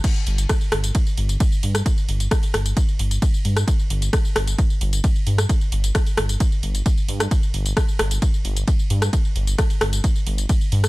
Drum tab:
CC |x---------------|----------------|----------------|----------------|
RD |x---x---x---x---|x---x---x---x---|x---x---x---x---|x---x---x---x---|
HH |x-oxx-oxx-oxx-ox|x-oxxooxx-oxx-ox|x-oxx-oxx-oxx-ox|x-oxxooxx-oxx-ox|
TB |xx-xxx-xxx-xxx-x|xx-xxx-xxx-xxx-x|xx-xxx-xxx-xxx-x|xx-xxx-xxx-xxx-x|
SD |----r-r--------r|----r-r--------r|----r-r--------r|----r-r--------r|
BD |o---o---o---o---|o---o---o---o---|o---o---o---o---|o---o---o---o---|

CC |----------------|----------------|
RD |x---x---x---x---|x---x---x---x---|
HH |x-oxx-oxx-oxx-ox|x-oxxooxx-oxx-ox|
TB |xx-xxx-xxx-xxx-x|xx-xxx-xxx-xxx-x|
SD |----r-r--------r|----r-r--------r|
BD |o---o---o---o---|o---o---o---o---|